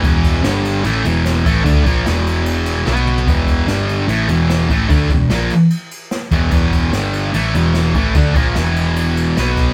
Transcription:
0.02 picked electric bass E1, distorted electric guitar E2 B2 E3, kick, crash
0.24 kick, crash
0.44 picked electric bass G1, distorted electric guitar G2 D3 G3, snare, crash
0.65 crash
0.84 picked electric bass A1, distorted electric guitar A2 E3 A3, crash
1.05 picked electric bass E1, distorted electric guitar E2 B2 E3, crash
1.25 snare, crash
1.45 picked electric bass A1, distorted electric guitar A2 E3 A3, kick, crash
1.64 picked electric bass D2, distorted electric guitar D3 A3 D4, kick, crash
1.85 picked electric bass A#1, distorted electric guitar A#2 F3 A#3, kick, crash
2.05 picked electric bass E1, distorted electric guitar E2 B2 E3, snare, crash
2.26 crash
2.46 crash
2.66 crash
2.86 picked electric bass B1, distorted electric guitar B2 F#3 B3, snare
2.96 high tom
3.07 mid tom
3.18 floor tom
3.27 picked electric bass E1, distorted electric guitar E2 B2 E3, kick, crash
3.47 kick, crash
3.68 picked electric bass G1, distorted electric guitar G2 D3 G3, snare, crash
3.89 crash
4.08 picked electric bass A1, distorted electric guitar A2 E3 A3, crash
4.28 picked electric bass E1, distorted electric guitar E2 B2 E3, crash
4.50 snare, crash
4.69 picked electric bass A1, distorted electric guitar A2 E3 A3, kick, crash
4.88 picked electric bass D2, distorted electric guitar D3 A3 D4, kick, crash
5.10 picked electric bass E1, distorted electric guitar E2 B2, kick, crash
5.30 picked electric bass A#1, distorted electric guitar A#2 F3 A#3, snare, crash
5.50 crash
5.70 crash
5.91 crash
6.11 snare, crash
6.31 picked electric bass E1, distorted electric guitar E2 B2 E3, kick, crash
6.51 picked electric bass E1, distorted electric guitar E2 B2 E3, kick, crash
6.72 kick, crash
6.92 picked electric bass G1, distorted electric guitar G2 D3 G3, snare, crash
7.13 crash
7.33 picked electric bass A1, distorted electric guitar A2 E3 A3, crash
7.54 picked electric bass E1, distorted electric guitar E2 B2 E3, crash
7.74 snare, crash
7.94 picked electric bass A1, distorted electric guitar A2 E3 A3, kick, crash
8.15 picked electric bass D2, distorted electric guitar D3 A3 D4, kick, crash
8.35 picked electric bass A#1, distorted electric guitar A#2 F3 A#3, kick, crash
8.55 picked electric bass E1, distorted electric guitar E2 B2 E3, snare, crash
8.76 crash
8.96 crash
9.17 crash
9.37 picked electric bass B1, distorted electric guitar B2 F#3 B3, snare, crash
9.57 kick, crash

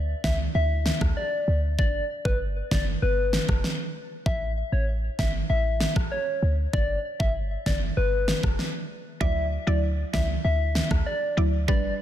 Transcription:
Already playing: 808-style bass D2
0.24 808-style bass C#2, soft synth lead E5, kick, snare
0.55 808-style bass D2, soft synth lead E5
0.86 snare
1.01 808-style bass D2, kick, cross-stick
1.17 soft synth lead D5
1.48 808-style bass D2
1.79 808-style bass G1, soft synth lead D5, kick
2.25 808-style bass G1, soft synth lead B4, kick
2.71 808-style bass F#1, soft synth lead D5, kick, snare
3.02 808-style bass G1, soft synth lead B4
3.33 snare
3.49 808-style bass F#1, kick, cross-stick
3.64 snare
4.26 808-style bass A1, soft synth lead E5, kick
4.72 808-style bass A1, soft synth lead C#5
5.19 808-style bass G1, soft synth lead E5, kick, snare
5.50 808-style bass A1, soft synth lead E5
5.80 snare
5.96 808-style bass A1, kick, cross-stick
6.12 soft synth lead C#5
6.42 808-style bass D2
6.73 808-style bass G1, soft synth lead D5, kick
7.20 808-style bass G1, soft synth lead E5, kick
7.66 808-style bass F#1, soft synth lead D5, kick, snare
7.97 808-style bass G1, soft synth lead B4
8.28 snare
8.43 808-style bass F#1, kick, cross-stick
8.59 snare
9.20 808-style bass D2, synth pluck F#3 E4 D5, soft synth lead E5, kick
9.67 808-style bass D2, synth pluck F#3 E4 D5, soft synth lead D5
10.13 808-style bass C#2, synth pluck F#3 E4 D5, soft synth lead E5, kick, snare
10.44 808-style bass D2, soft synth lead E5
10.75 snare
10.91 808-style bass D2, kick, cross-stick
11.06 soft synth lead D5
11.37 808-style bass D2, synth pluck F#3 E4 D5
11.68 808-style bass G1, synth pluck G3 D4 B4, soft synth lead D5, kick

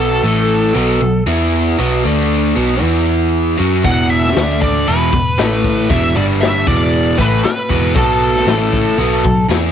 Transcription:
Already playing: picked electric bass B1, overdriven electric guitar B2 F#3 B3, lead electric guitar A4
0.23 picked electric bass A1, overdriven electric guitar A2 E3 A3
0.74 picked electric bass B1, overdriven electric guitar B2 F#3 B3
1.01 picked electric bass B1, overdriven electric guitar B2 F#3
1.26 picked electric bass E2, overdriven electric guitar E3 B3 E4
1.78 picked electric bass B1, overdriven electric guitar B2 F#3 B3
2.04 picked electric bass D2, overdriven electric guitar D3 A3 D4
2.55 picked electric bass B1, overdriven electric guitar B2 F#3 B3
2.81 picked electric bass E2, overdriven electric guitar E3 B3 E4
3.58 picked electric bass F#2, overdriven electric guitar F#3 C#4 F#4
3.84 picked electric bass E1, overdriven electric guitar E2 B2 E3, lead electric guitar F#5, kick, open hi-hat
4.10 lead electric guitar E5, open hi-hat
4.25 snare
4.35 picked electric bass D2, overdriven electric guitar D3 A3 D4, snare, open hi-hat
4.62 lead electric guitar D5, kick, open hi-hat
4.87 picked electric bass E1, overdriven electric guitar E2 B2 E3, lead electric guitar B4, open hi-hat
5.12 picked electric bass E1, overdriven electric guitar E2 B2, kick, open hi-hat
5.38 picked electric bass A1, overdriven electric guitar A2 E3 A3, snare, open hi-hat
5.64 kick, snare, open hi-hat
5.89 picked electric bass E1, overdriven electric guitar E2 B2 E3, lead electric guitar E5, kick, open hi-hat
6.15 picked electric bass G1, overdriven electric guitar G2 D3 G3, lead electric guitar D5, open hi-hat
6.41 lead electric guitar E5, snare, open hi-hat
6.67 picked electric bass E1, overdriven electric guitar E2 B2 E3, lead electric guitar D5, kick, open hi-hat
6.93 open hi-hat
7.18 picked electric bass A1, overdriven electric guitar A2 E3 A3, lead electric guitar B4, kick, open hi-hat
7.44 lead electric guitar B4, muted overdriven electric guitar stroke, snare, open hi-hat
7.69 picked electric bass E1, overdriven electric guitar E2 B2 E3, kick, snare, open hi-hat
7.95 picked electric bass B1, overdriven electric guitar B2 F#3 B3, lead electric guitar A4, kick, open hi-hat
8.21 open hi-hat
8.35 snare
8.47 picked electric bass A1, overdriven electric guitar A2 E3 A3, snare, open hi-hat
8.72 kick, open hi-hat
8.98 picked electric bass B1, overdriven electric guitar B2 F#3 B3, open hi-hat
9.24 picked electric bass B1, overdriven electric guitar B2 F#3, kick, open hi-hat
9.49 picked electric bass E2, overdriven electric guitar E3 B3 E4, snare, open hi-hat

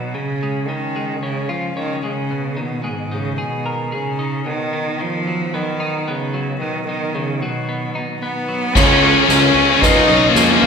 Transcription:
Already playing: cello B2, clean electric guitar F#3 B3 D#4
0.14 cello C#3, clean electric guitar C#3
0.43 clean electric guitar G#3
0.67 clean electric guitar C#3, cello D#3
0.96 clean electric guitar G#3
1.22 cello C#3, clean electric guitar C#4
1.49 cello F3, clean electric guitar F4
1.76 cello D#3, clean electric guitar C#4
2.03 cello C#3, clean electric guitar G#3
2.31 clean electric guitar B2
2.57 cello B2, clean electric guitar D#3
2.84 cello G#2, clean electric guitar G#3
3.12 cello C#3, clean electric guitar D#4
3.38 cello B2, clean electric guitar G#4
3.66 clean electric guitar A#4
3.92 cello C#3, clean electric guitar G#4
4.19 clean electric guitar D#4
4.46 clean electric guitar B2, cello D#3
4.73 clean electric guitar D#3
5.00 clean electric guitar D#3, cello F3
5.27 clean electric guitar F#3
5.54 cello D#3, clean electric guitar B3
5.80 clean electric guitar D#4
6.08 cello C#3, clean electric guitar B3
6.34 clean electric guitar F#3
6.60 clean electric guitar B2, cello D#3
6.87 cello D#3, clean electric guitar D#3
7.14 cello C#3, clean electric guitar D#3
7.41 cello B2, clean electric guitar F#3
7.69 clean electric guitar B3
7.95 clean electric guitar D#4
8.21 cello B3, clean electric guitar B3
8.48 clean electric guitar F#3
8.75 fingered electric bass C#2, clean electric guitar C#3, cello C#4, distorted electric guitar C#4 F4, string section G#4 C#5 F5 C#6, felt piano C#5, kick, snare, crash
8.82 distorted electric guitar C#4 F4
8.91 distorted electric guitar C#4 F4
8.98 distorted electric guitar C#4 F4, ride
9.03 clean electric guitar G#3, distorted electric guitar C#4 F4
9.13 distorted electric guitar C#4 F4
9.21 distorted electric guitar C#4 F4
9.29 fingered electric bass C#2, clean electric guitar C#3, distorted electric guitar C#4 F4, cello C#4, snare, ride
9.37 distorted electric guitar C#4 F4
9.43 distorted electric guitar C#4 F4
9.51 fingered electric bass C#2, distorted electric guitar C#4 F4
9.55 clean electric guitar G#3, ride
9.59 distorted electric guitar C#4 F4
9.66 distorted electric guitar C#4 F4
9.74 distorted electric guitar C#4 F4
9.81 fingered electric bass C#2, distorted electric guitar C#4 F4, cello D#4, clean electric guitar F4, felt piano B4, kick, snare, ride
9.90 distorted electric guitar C#4 F4
9.97 distorted electric guitar C#4 F4
10.04 fingered electric bass B1, distorted electric guitar C#4 F4, clean electric guitar C#4, felt piano C#5
10.09 distorted electric guitar C#4 F4, ride
10.20 distorted electric guitar C#4 F4
10.28 cello A#3, distorted electric guitar C#4 F4
10.35 fingered electric bass F2, clean electric guitar G#3, distorted electric guitar C#4 F4, snare, ride
10.43 distorted electric guitar C#4 F4
10.50 distorted electric guitar C#4 F4
10.58 fingered electric bass A#1, distorted electric guitar C#4 F4, felt piano F5
10.62 clean electric guitar C#3, ride

